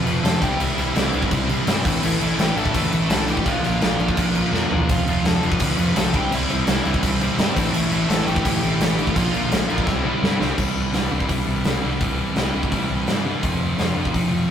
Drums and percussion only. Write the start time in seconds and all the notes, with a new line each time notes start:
0.07 crash
0.25 snare, crash
0.42 kick, crash
0.60 crash
0.78 crash
0.96 snare, crash
1.13 crash
1.22 kick
1.31 kick, crash
1.49 crash
1.67 snare, crash
1.85 kick, crash
2.03 crash
2.21 crash
2.39 snare, crash
2.58 crash
2.66 kick
2.74 kick, crash
2.92 crash
3.10 snare, crash
3.28 crash
3.37 kick
3.46 kick, crash
3.64 crash
3.81 snare, crash
4.00 crash
4.08 kick
4.17 kick, crash
4.35 crash
4.54 snare
4.71 floor tom
4.89 kick, crash
5.07 crash
5.25 snare, crash
5.43 crash
5.52 kick
5.60 kick, crash
5.78 crash
5.96 snare, crash
6.14 kick, crash
6.32 crash
6.50 crash
6.67 snare, crash
6.85 crash
6.94 kick
7.03 kick, crash
7.21 crash
7.39 snare, crash
7.57 kick, crash
7.74 crash
7.92 crash
8.10 snare, crash
8.28 crash
8.36 kick
8.45 kick, crash
8.63 crash
8.81 snare, crash
8.99 crash
9.07 kick
9.16 kick, crash
9.34 crash
9.52 snare, crash
9.70 crash
9.78 kick
9.87 kick, snare
10.24 snare
10.41 snare
10.58 kick, crash
10.93 snare, open hi-hat
11.20 kick
11.29 kick, open hi-hat
11.64 snare, open hi-hat
12.00 kick, open hi-hat
12.36 snare, open hi-hat
12.63 kick
12.72 kick, open hi-hat
13.07 snare, open hi-hat
13.43 kick, open hi-hat
13.79 snare, open hi-hat
14.05 kick
14.14 kick, open hi-hat